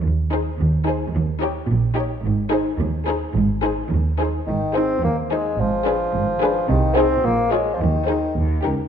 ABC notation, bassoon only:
X:1
M:2/4
L:1/16
Q:1/4=108
K:Ab
V:1 name="Bassoon" clef=bass
z8 | z8 | z8 | z8 |
E,2 C2 B,2 A,2 | F,8 | E,2 C2 B,2 A,3/2 F,/2 | E,4 z4 |]